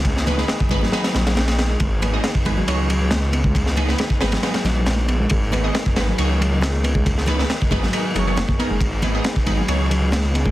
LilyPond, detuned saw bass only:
\new Staff \with { instrumentName = "Detuned saw bass" } { \clef bass \time 4/4 \key gis \minor \tempo 4 = 137 cis,4 r8 gis,,16 r8. ais,,4. | gis,,4 r8 gis,,16 r16 cis,2~ | cis,4 r8 gis,,16 r8. ais,,4. | gis,,4 r8 gis,,16 r16 cis,2~ |
cis,4 r8 gis,,16 r8. fis,,8. r8 fis,,16 | gis,,4 r8 gis,,16 r16 cis,2 | }